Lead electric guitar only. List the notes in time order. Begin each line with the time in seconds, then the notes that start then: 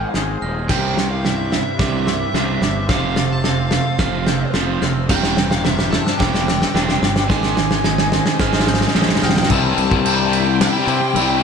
Already playing: G#5
0.69 G5
1.11 F5
1.25 E5
1.80 E5
2.90 F5
3.32 A5
3.46 F5
5.10 G5
5.51 F5
5.64 E5
5.90 A5
6.18 G5
7.29 G#5
9.24 G5
9.37 G5
9.52 A5
10.63 G5